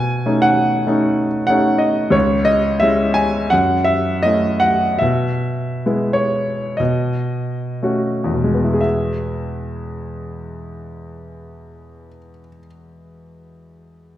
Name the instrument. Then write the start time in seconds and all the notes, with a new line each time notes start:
grand piano
Already playing: B2 G#5
0.26 A3 C#4 D#4
0.42 F#5
0.87 A3 C#4 D#4
1.47 A3 C#4 D#4 F#5
1.78 D#5
2.10 C#2 C#5
2.45 D#5
2.80 G#3 C#4 E4 E5
3.14 G#5
3.50 F#2 F#5
3.84 E5
4.23 A3 C#4 E4 D#5
4.60 F#5
4.99 B2 E5
5.86 G#3 B3 E4
6.13 C#5
6.77 B2 D#5
7.83 A3 C#4 F#4
8.24 E2
8.34 B2
8.44 G#3
8.54 B3
8.64 E4
8.74 G#4
8.81 E5